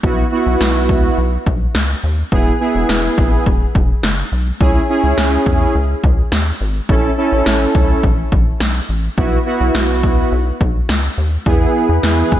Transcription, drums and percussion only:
0.03 kick loud
0.61 snare loud
0.89 kick loud
1.47 kick loud
1.75 snare loud
2.32 kick loud
2.89 snare loud
3.18 kick loud
3.46 kick medium
3.75 kick loud
4.03 snare loud
4.61 kick loud
5.18 snare loud
5.46 kick loud
6.04 kick loud
6.32 snare loud
6.89 kick loud
7.46 snare loud
7.75 kick loud
8.03 kick medium
8.32 kick loud
8.60 snare loud
9.18 kick loud
9.75 snare loud
10.03 kick loud
10.61 kick loud
10.89 snare loud
11.46 kick loud
12.03 snare loud
12.32 kick loud

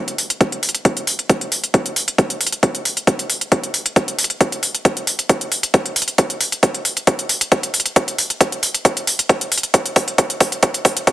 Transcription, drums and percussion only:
0.08 closed hi-hat medium
0.18 open hi-hat loud
0.30 closed hi-hat medium
0.41 kick loud
0.41 closed hi-hat medium
0.52 closed hi-hat medium
0.63 open hi-hat loud
0.69 closed hi-hat medium
0.75 closed hi-hat medium
0.85 kick loud
0.85 closed hi-hat medium
0.97 closed hi-hat medium
1.07 open hi-hat loud
1.19 closed hi-hat medium
1.29 kick loud
1.29 closed hi-hat medium
1.41 closed hi-hat medium
1.52 open hi-hat loud
1.64 closed hi-hat medium
1.74 kick loud
1.74 closed hi-hat medium
1.86 closed hi-hat medium
1.96 open hi-hat loud
2.08 closed hi-hat medium
2.18 kick loud
2.18 closed hi-hat medium
2.30 closed hi-hat medium
2.41 open hi-hat loud
2.47 closed hi-hat medium
2.52 closed hi-hat medium
2.63 kick loud
2.63 closed hi-hat medium
2.75 closed hi-hat medium
2.85 open hi-hat loud
2.97 closed hi-hat medium
3.07 kick loud
3.07 closed hi-hat medium
3.19 closed hi-hat medium
3.30 open hi-hat loud
3.41 closed hi-hat medium
3.52 kick loud
3.52 closed hi-hat medium
3.64 closed hi-hat medium
3.74 open hi-hat loud
3.86 closed hi-hat medium
3.96 kick loud
3.96 closed hi-hat medium
4.08 closed hi-hat medium
4.19 open hi-hat loud
4.24 closed hi-hat medium
4.30 closed hi-hat medium
4.41 kick loud
4.41 closed hi-hat medium
4.52 closed hi-hat medium
4.63 open hi-hat loud
4.75 closed hi-hat medium
4.85 kick loud
4.85 closed hi-hat medium
4.97 closed hi-hat medium
5.07 open hi-hat loud
5.19 closed hi-hat medium
5.29 kick loud
5.29 closed hi-hat medium
5.41 closed hi-hat medium
5.52 open hi-hat loud
5.63 closed hi-hat medium
5.74 kick loud
5.74 closed hi-hat medium
5.86 closed hi-hat medium
5.96 open hi-hat loud
6.02 closed hi-hat medium
6.08 closed hi-hat medium
6.18 kick loud
6.18 closed hi-hat medium
6.30 closed hi-hat soft
6.41 open hi-hat loud
6.52 closed hi-hat medium
6.63 kick loud
6.63 closed hi-hat medium
6.75 closed hi-hat soft
6.85 open hi-hat loud
6.97 closed hi-hat soft
7.07 kick loud
7.07 closed hi-hat medium
7.19 closed hi-hat medium
7.29 open hi-hat loud
7.41 closed hi-hat medium
7.52 kick loud
7.52 closed hi-hat medium
7.63 closed hi-hat medium
7.74 open hi-hat loud
7.80 closed hi-hat medium
7.86 closed hi-hat medium
7.96 kick loud
7.96 closed hi-hat medium
8.08 closed hi-hat soft
8.18 open hi-hat loud
8.30 closed hi-hat medium
8.41 kick loud
8.41 closed hi-hat medium
8.52 closed hi-hat soft
8.63 open hi-hat loud
8.74 closed hi-hat medium
8.85 kick loud
8.85 closed hi-hat medium
8.97 closed hi-hat medium
9.07 open hi-hat loud
9.19 closed hi-hat medium
9.29 kick loud
9.29 closed hi-hat medium
9.41 closed hi-hat medium
9.52 open hi-hat loud
9.58 closed hi-hat medium
9.63 closed hi-hat soft
9.74 kick loud
9.74 closed hi-hat medium
9.86 closed hi-hat medium
9.96 kick loud
9.96 open hi-hat loud
10.08 closed hi-hat medium
10.18 kick loud
10.18 closed hi-hat medium
10.30 closed hi-hat medium
10.40 kick loud
10.40 open hi-hat medium
10.52 closed hi-hat medium
10.63 kick loud
10.63 closed hi-hat medium
10.74 closed hi-hat medium
10.85 kick loud
10.85 open hi-hat loud
10.97 closed hi-hat medium
11.07 kick medium
11.07 closed hi-hat medium

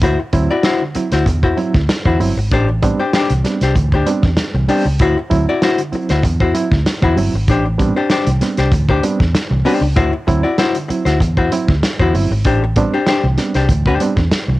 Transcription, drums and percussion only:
0.02 kick loud
0.02 closed hi-hat loud
0.33 kick medium
0.33 closed hi-hat medium
0.63 snare loud
0.63 closed hi-hat medium
0.95 closed hi-hat medium
1.12 snare soft
1.12 closed hi-hat medium
1.26 kick loud
1.26 closed hi-hat medium
1.43 kick medium
1.57 closed hi-hat medium
1.74 kick loud
1.74 snare soft
1.89 snare loud
1.89 closed hi-hat loud
2.05 kick loud
2.20 open hi-hat medium
2.51 kick loud
2.51 closed hi-hat loud
2.82 kick medium
2.82 closed hi-hat medium
3.13 snare loud
3.13 closed hi-hat medium
3.30 closed hi-hat medium
3.45 snare soft
3.45 closed hi-hat medium
3.61 snare soft
3.61 closed hi-hat medium
3.76 kick medium
3.76 closed hi-hat medium
3.92 kick loud
4.07 closed hi-hat medium
4.23 kick loud
4.23 snare soft
4.37 snare loud
4.37 closed hi-hat medium
4.69 open hi-hat medium
4.99 kick loud
4.99 closed hi-hat medium
5.31 kick medium
5.31 closed hi-hat medium
5.62 snare medium
5.62 closed hi-hat medium
5.78 closed hi-hat medium
5.93 closed hi-hat medium
6.09 snare soft
6.09 closed hi-hat soft
6.24 kick medium
6.24 closed hi-hat medium
6.40 kick loud
6.55 closed hi-hat medium
6.72 kick loud
6.72 snare soft
6.86 snare loud
6.86 closed hi-hat medium
7.02 kick loud
7.17 open hi-hat medium
7.48 kick loud
7.48 closed hi-hat medium
7.79 kick medium
7.79 closed hi-hat medium
8.10 snare medium
8.10 closed hi-hat medium
8.27 closed hi-hat medium
8.41 snare soft
8.41 closed hi-hat medium
8.57 snare soft
8.57 closed hi-hat medium
8.72 kick loud
8.72 closed hi-hat medium
8.88 kick medium
9.03 closed hi-hat medium
9.20 kick loud
9.20 snare soft
9.34 snare loud
9.34 closed hi-hat loud
9.66 open hi-hat medium
9.96 kick loud
9.96 closed hi-hat medium
10.28 kick medium
10.28 closed hi-hat medium
10.58 snare medium
10.58 closed hi-hat medium
10.75 closed hi-hat medium
10.90 closed hi-hat medium
11.06 snare soft
11.06 closed hi-hat medium
11.20 kick medium
11.20 closed hi-hat medium
11.37 kick medium
11.52 closed hi-hat medium
11.68 kick loud
11.68 snare soft
11.83 snare loud
11.83 closed hi-hat medium
11.99 kick medium
12.15 open hi-hat medium
12.44 kick loud
12.44 closed hi-hat medium
12.76 kick medium
12.76 closed hi-hat medium
13.07 snare medium
13.07 closed hi-hat medium
13.38 snare soft
13.38 closed hi-hat medium
13.54 snare soft
13.54 closed hi-hat medium
13.69 kick medium
13.69 closed hi-hat medium
13.86 kick loud
14.00 closed hi-hat medium
14.17 kick loud
14.17 snare soft
14.32 snare loud
14.32 closed hi-hat medium

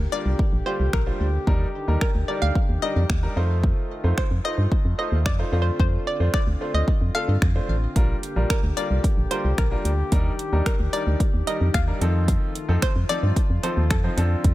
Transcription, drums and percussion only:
0.39 kick loud
0.93 finger snap loud
0.93 kick loud
1.47 kick loud
2.01 finger snap loud
2.01 kick loud
2.55 kick loud
3.10 finger snap loud
3.10 kick loud
3.64 kick loud
4.18 finger snap loud
4.18 kick loud
4.72 kick loud
5.26 finger snap loud
5.26 kick loud
5.80 kick loud
6.34 finger snap loud
6.34 kick loud
6.88 kick medium
7.42 finger snap loud
7.42 kick loud
7.96 kick loud
7.96 closed hi-hat medium
8.23 closed hi-hat soft
8.50 finger snap loud
8.50 kick loud
8.50 closed hi-hat medium
8.77 closed hi-hat medium
9.04 kick loud
9.04 closed hi-hat medium
9.31 closed hi-hat medium
9.58 finger snap loud
9.58 kick loud
9.58 closed hi-hat medium
9.85 closed hi-hat medium
10.12 kick loud
10.12 closed hi-hat medium
10.39 closed hi-hat soft
10.66 finger snap loud
10.66 kick loud
10.66 closed hi-hat medium
10.93 closed hi-hat medium
11.20 kick loud
11.20 closed hi-hat medium
11.47 closed hi-hat medium
11.74 finger snap loud
11.74 kick loud
11.74 closed hi-hat medium
12.01 closed hi-hat medium
12.28 kick loud
12.28 closed hi-hat medium
12.55 closed hi-hat soft
12.82 finger snap loud
12.82 kick loud
12.82 closed hi-hat medium
13.09 closed hi-hat medium
13.36 kick medium
13.36 closed hi-hat medium
13.63 closed hi-hat medium
13.91 finger snap loud
13.91 kick loud
13.91 closed hi-hat medium
14.18 closed hi-hat medium
14.44 kick loud
14.44 closed hi-hat medium

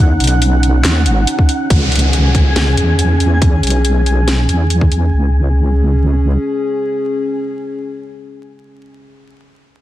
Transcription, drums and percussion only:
0.20 closed hi-hat medium
0.24 closed hi-hat medium
0.27 closed hi-hat medium
0.42 closed hi-hat medium
0.63 closed hi-hat medium
0.85 snare loud
0.85 clap medium
0.85 closed hi-hat medium
1.06 closed hi-hat medium
1.27 closed hi-hat medium
1.39 kick medium
1.49 closed hi-hat medium
1.70 kick loud
1.70 closed hi-hat medium
1.92 closed hi-hat soft
1.96 closed hi-hat medium
1.99 closed hi-hat medium
2.13 closed hi-hat medium
2.35 kick medium
2.35 closed hi-hat medium
2.56 snare loud
2.56 closed hi-hat medium
2.77 closed hi-hat medium
2.99 closed hi-hat medium
3.20 closed hi-hat medium
3.42 kick loud
3.42 closed hi-hat medium
3.63 closed hi-hat soft
3.67 closed hi-hat medium
3.70 closed hi-hat medium
3.85 closed hi-hat medium
4.06 closed hi-hat medium
4.28 snare loud
4.28 closed hi-hat medium
4.49 closed hi-hat soft
4.70 closed hi-hat medium
4.81 kick medium
4.92 closed hi-hat medium

